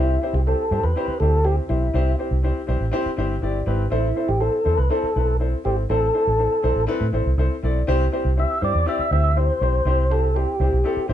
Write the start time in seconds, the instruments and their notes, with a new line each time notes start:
Already playing: fingered electric bass C2, upright piano C4 E4 G4 C5
0.00 tonewheel organ E4
0.22 upright piano C4 E4 G4 C5
0.34 fingered electric bass C2, tonewheel organ G4
0.46 upright piano C4 E4 G4 C5, tonewheel organ A4
0.70 fingered electric bass G2, upright piano C4 E4 G4 C5
0.83 fingered electric bass E2, tonewheel organ B4
0.96 upright piano C4 E4 G4 C5
1.08 muted fingered electric bass stroke
1.20 fingered electric bass D2, upright piano C4 E4 G4 C5, tonewheel organ A4
1.45 upright piano C4 E4 G4 C5, tonewheel organ G4
1.68 fingered electric bass B1, upright piano C4 E4 G4 C5, tonewheel organ E4
1.94 fingered electric bass C2, upright piano C4 E4 G4 C5
2.18 upright piano C4 E4 G4 C5
2.31 fingered electric bass C2
2.43 upright piano C4 E4 G4 C5
2.67 fingered electric bass B1, upright piano C4 E4 G4 C5
2.81 fingered electric bass A1
2.91 upright piano C4 E4 G4 C5
3.06 muted fingered electric bass stroke
3.17 fingered electric bass G1, upright piano C4 E4 G4 C5
3.41 fingered electric bass G1, upright piano C4 E4 G4 D5
3.66 fingered electric bass G#1, upright piano C4 E4 G4 B4
3.90 fingered electric bass A1, upright piano C4 E4 A4 C5, tonewheel organ E4
4.15 upright piano C4 E4 A4 C5
4.29 fingered electric bass A1, tonewheel organ G4
4.39 upright piano C4 E4 A4 C5, tonewheel organ A4
4.64 fingered electric bass E2, upright piano C4 E4 A4 C5
4.77 fingered electric bass C2, tonewheel organ B4
4.90 upright piano C4 E4 A4 C5, tonewheel organ A4
5.03 muted fingered electric bass stroke
5.15 fingered electric bass B1, upright piano C4 E4 A4 B4
5.39 upright piano C4 E4 A4 C5
5.64 fingered electric bass G#1, upright piano C4 E4 A4 C5, tonewheel organ G4
5.89 fingered electric bass A1, upright piano C4 E4 A4 C5, tonewheel organ A4
6.13 upright piano C4 E4 A4 C5
6.27 fingered electric bass A1
6.38 upright piano C4 E4 A4 C5
6.63 fingered electric bass B1, upright piano C4 E4 A4 C5
6.76 fingered electric bass A1
6.87 upright piano C4 E4 A4 B4
7.01 fingered electric bass A2
7.12 fingered electric bass A1, upright piano C4 E4 A4 C5
7.26 fingered electric bass C2
7.37 fingered electric bass C2, upright piano C4 E4 A4 C5
7.63 fingered electric bass B1, upright piano C4 E4 A4 D5
7.87 fingered electric bass C2, upright piano C4 E4 G4 C5
8.12 upright piano C4 E4 G4 C5
8.25 fingered electric bass C2
8.36 upright piano C4 E4 G4 C5, tonewheel organ E5
8.61 fingered electric bass G2, upright piano C4 E4 G4 C5, tonewheel organ D5
8.75 fingered electric bass E2
8.86 upright piano C4 E4 G4 D5, tonewheel organ E5
8.99 muted fingered electric bass stroke
9.11 fingered electric bass D2, upright piano C4 E4 G4 C5, tonewheel organ E5
9.36 upright piano C4 E4 G4 C5, tonewheel organ C5
9.61 fingered electric bass B1, upright piano C4 E4 G4 C5, tonewheel organ C5
9.85 fingered electric bass C2, upright piano C4 E4 G4 C5
10.10 upright piano C4 E4 G4 C5, tonewheel organ A4
10.34 upright piano C4 E4 G4 C5, tonewheel organ G4
10.59 fingered electric bass C2, upright piano C4 E4 G4 C5
10.73 fingered electric bass B1
10.84 upright piano C4 E4 G4 A4
10.97 muted fingered electric bass stroke
11.08 fingered electric bass A1, upright piano C4 E4 G4 C5